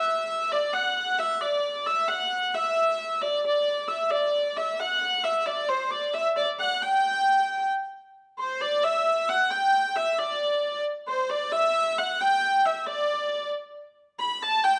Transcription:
X:1
M:6/8
L:1/8
Q:3/8=89
K:Dmix
V:1 name="Hurdy-gurdy"
e2 d f2 e | d2 e f2 e- | e2 d d2 e | d2 e f2 e |
d c d e d f | g4 z2 | z c d e2 f | g2 e d3 |
z c d e2 f | g2 e d3 | z3 b a g |]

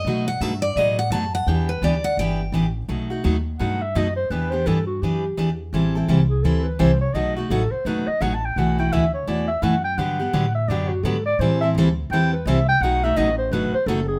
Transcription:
X:1
M:4/4
L:1/16
Q:"Swing" 1/4=169
K:Bphr
V:1 name="Steel-string acoustic guitar"
^d2 f2 e2 =d2 ^d2 f2 a2 f2 | g2 B2 d2 f2 g6 z2 | z16 | z16 |
z16 | z16 | z16 | z16 |
z16 | z16 |]
V:2 name="Clarinet"
z16 | z16 | z8 f2 e2 ^d2 c2 | B2 c2 A2 F2 G6 z2 |
z6 ^G2 A2 B2 c2 ^c2 | ^d2 F2 A2 c2 B2 d2 (3f2 a2 g2 | f2 g2 e2 ^c2 d2 e2 f2 g2 | f6 e2 d2 F2 A2 d2 |
c2 e2 z4 g2 B2 e2 g2 | f2 e2 ^d2 c2 B2 c2 A2 ^G2 |]
V:3 name="Steel-string acoustic guitar"
[B,,F,A,^DF]2 z2 [B,,F,A,DF] z3 [B,,F,A,DF]2 z2 [B,,F,A,DF] z3 | [E,B,DG]2 z2 [E,B,DG] z3 [E,B,DG]2 z2 [E,B,DG] z3 | [B,,F,A,^DF]2 [A,DF]2 [B,,F,A,DF] z3 [B,,F,A,DF]2 z2 [B,,F,A,DF] z3 | [E,B,DG]2 [B,DG]2 [E,B,DG] z3 [E,B,DG]2 z2 [E,B,DG] z3 |
[E,G,CEA]2 [CEA]2 [E,G,CEA] z3 [E,G,CEA]2 z2 [E,G,CEA] z3 | [B,,F,A,^DF]2 [A,DF]2 [B,,F,A,DF] z3 [B,,F,A,DF]2 z2 [B,,F,A,DF] z3 | [B,,E,A,EF]2 [A,EF]2 [B,,E,A,EF] z3 [B,,E,A,EF]2 z2 [B,,E,A,EF] z3 | [D,F,B,DG]2 [B,DG]2 [D,F,B,DG] z3 [D,F,B,DG]2 z2 [D,F,B,DG] z3 |
[E,G,CEA]2 [CEA]2 [E,G,CEA] z3 [E,G,CEA]2 z2 [E,G,CEA] z3 | [B,,F,A,^DF]2 [A,DF]2 [B,,F,A,DF] z3 [B,,F,A,DF]2 z2 [B,,F,A,DF] z3 |]
V:4 name="Upright bass" clef=bass
B,,4 G,,4 A,,4 F,,4 | E,,4 D,,4 G,,,4 A,,,4 | B,,,4 ^D,,4 G,,4 F,,4 | E,,4 G,,4 F,,4 E,,4 |
A,,,4 C,,4 D,,4 C,,4 | B,,,4 A,,,2 z2 F,,,2 z2 A,,,4 | B,,,4 D,,4 E,,4 F,,4 | G,,4 A,,4 F,,4 ^G,,4 |
A,,4 D,,4 E,,4 C,,4 | B,,,4 A,,,4 G,,,2 z2 F,,,4 |]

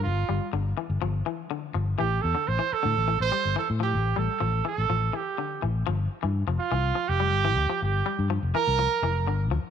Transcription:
X:1
M:4/4
L:1/16
Q:1/4=124
K:Gdor
V:1 name="Trumpet"
F4 z12 | G2 A2 c2 A4 c3 A2 G- | G2 A4 A4 G4 z2 | z6 F4 G6 |
G4 z2 B8 z2 |]
V:2 name="Clean electric guitar" clef=bass
F, z G,2 D,2 E,2 F,2 E,2 D,2 F,2 | E,2 z D,2 E,2 D,2 E,2 G,2 E,2 F,- | F, z G,2 F,2 E,2 F,2 E,2 D,2 E,2 | F,2 z E,2 F,2 E,2 F,2 G,2 E,2 F,- |
F, z G,2 F,2 E,2 F,2 E,2 D,2 F,2 |]
V:3 name="Fingered electric bass" clef=bass
G,,,2 G,,, z G,,,2 z G,,, G,,,2 z4 G,,,2 | A,,,2 E,, z A,,, z2 A,, A,,,2 A,,, z G,,, z A,,2 | A,,,2 A,,, z A,,,2 z A,,, A,,,2 z4 A,,,2 | G,,,2 z G,,2 F,,, z C,,2 z F,,,2 G,,,2 D,, z |
G,,,2 z G,,2 F,,, z C,,2 z F,,,2 G,,,2 D,, z |]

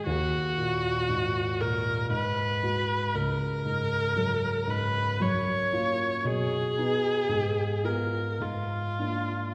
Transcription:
X:1
M:3/4
L:1/8
Q:1/4=58
K:Ebm
V:1 name="Viola"
G3 B c2 | B3 c d2 | A3 B F2 |]
V:2 name="Grand piano" clef=bass
E,, B,, A,, B,, A,, [A,G] | D,, A,, G,, A,, G,, [B,F] | =B,, [=B,^D] A,, [CF] A,, [_B,=D] |]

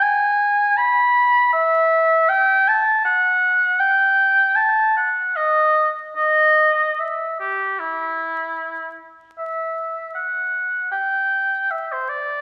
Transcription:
X:1
M:4/4
L:1/16
Q:1/4=78
K:Em
V:1 name="Oboe"
^g4 b4 e4 =g2 a2 | f4 g4 a2 f2 ^d3 z | ^d4 e2 G2 E6 z2 | e4 f4 g4 e c d2 |]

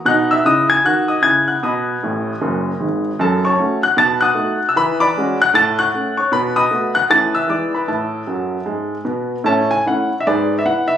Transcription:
X:1
M:4/4
L:1/16
Q:"Swing" 1/4=153
K:Bmix
V:1 name="Upright piano"
[ff']2 [ee']2 [dd']2 [gg']2 [ff']2 [dd']2 [gg']2 [ff']2 | [dbd']12- [dbd']2 z2 | [K:A] [Aa]2 [cac']4 [ff']2 [aa']2 [f^d'f']4- [fd'f'] e' | [Bb]2 [dbd']4 [ff']2 [aa']2 [fc'f']4 [cc']2 |
[Bb]2 [^db^d']4 [ff']2 [aa']2 [ee']2 [=d=d']2 [Bb]2 | [Aea]12 z4 | [cea]2 g2 f3 e [GBd]3 e f2 e2 |]
V:2 name="Upright piano"
[B,,D]4 [C,E]4 [D,F]4 [C,E]4 | B,,4 [A,,,A,,]4 [F,,,F,,]4 [G,,,G,,]4 | [K:A] F,,4 [A,CF]4 B,,4 [A,^DF]4 | E,4 [G,CF]4 A,,4 [A,CA]4 |
B,,4 [A,B,F]4 [E,A,CE]4 [E,G,B,E]4 | A,,4 [F,,F,]4 [G,,G,]4 [B,,B,]4 | [A,,C]4 [A,CE]4 G,,4 [B,E]4 |]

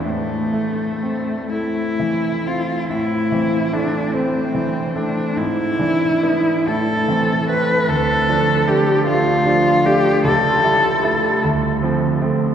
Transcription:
X:1
M:6/8
L:1/8
Q:3/8=49
K:Am
V:1 name="Cello"
A,3 E2 F | E2 D C2 D | E3 A2 B | A2 G F2 G |
A3 z3 |]
V:2 name="Grand piano"
A,, A, C A, E, C | A,, [E,C] [A,C] [A,C] [E,C] [A,C] | ^G,, [E,D] [B,D] A,, [E,C] [A,C] | D,, [F,D] [A,D] [A,D] [F,D] [A,D] |
^C,, [G,E] [A,E] D,, [F,=C] [A,C] |]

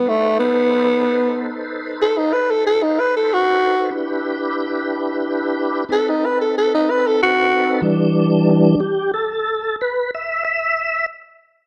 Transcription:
X:1
M:12/8
L:1/16
Q:3/8=62
K:Em
V:1 name="Tenor saxophone"
A,2 B,8 z2 A ^D B A A D B A F4 | z12 A ^D B A A D B A F4 | z24 |]
V:2 name="Tonewheel organ"
[^DABc]24 | [DEGB]12 [C^DAB]12 | z4 D2 G2 A4 B2 e2 e4 z4 |]
V:3 name="Tonewheel organ" clef=bass
z24 | z24 | [E,G,D]6 z16 z2 |]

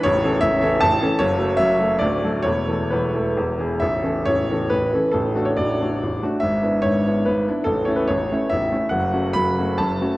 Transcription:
X:1
M:3/4
L:1/16
Q:1/4=141
K:A
V:1 name="Grand piano"
c4 e4 a4 | c4 e4 d4 | c4 B4 z4 | e4 c4 B4 |
A3 c d6 z2 | e4 c4 B4 | A2 c B c4 e4 | f4 b4 a4 |]
V:2 name="Grand piano" clef=bass
[A,,,,A,,,]2 [E,CA]2 [A,,,,A,,,]2 [E,CA]2 [A,,,,A,,,]2 [E,CA]2 | [F,,,F,,]2 [F,A,A]2 [F,,,F,,]2 [F,A,A]2 [D,,,D,,]2 [F,A,A]2 | [E,,,E,,]2 [E,A,A]2 [E,,,E,,]2 [E,A,A]2 [E,,,E,,]2 [E,B,G]2 | [A,,,,A,,,]2 [E,CA]2 [A,,,,A,,,]2 [E,CA]2 [A,,,,A,,,]2 [E,CA]2 |
[A,,,,A,,,]2 [A,DF]2 [A,,,,A,,,]2 [A,DF]2 [A,,,,A,,,]2 [A,DF]2 | [G,,,G,,]2 [B,DE]2 [G,,,G,,]2 [B,DE]2 [G,,,G,,]2 [B,DE]2 | [A,,,,A,,,]2 [A,CE]2 [A,,,,A,,,]2 [A,CE]2 [A,,,,A,,,]2 [A,CE]2 | [F,,,F,,]2 [A,CF]2 [F,,,F,,]2 [A,CF]2 [F,,,F,,]2 [A,CF]2 |]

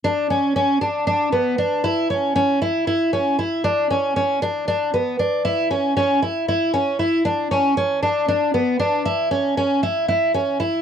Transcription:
X:1
M:7/8
L:1/8
Q:1/4=117
K:Bm
V:1 name="Twelve-string acoustic guitar"
D C C D D B, D | E C C E E C E | D C C D D B, D | E C C E E C E |
D C C D D B, D | E C C E E C E |]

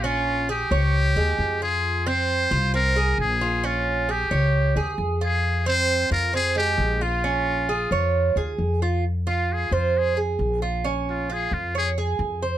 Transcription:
X:1
M:4/4
L:1/8
Q:1/4=133
K:Fm
V:1 name="Muted trumpet"
F2 G4- G A- | A c3 B2 A2 | F2 G4 z A- | A c2 B A G2 F- |
F6 z2 | z F A F A z3 | z F A F A z3 |]
V:2 name="Cuban tres"
D2 A d2 A,2 F- | F C2 F C A2 F | D2 A d2 A2 F- | F C2 F C A,2 F |
D2 A d2 A2 F | z F2 c2 A2 F | D2 F2 d A2 c |]
V:3 name="Upright bass" clef=bass
B,,,3 D,,2 E,, F,,2- | F,,3 C,,3 B,,,2- | B,,,3 D,,2 E,, F,,2- | F,,3 F,,3 B,,,2- |
B,,,3 F,,2 E,, F,,2- | F,,3 F,,3 B,,,2- | B,,,3 F,,3 F,,2 |]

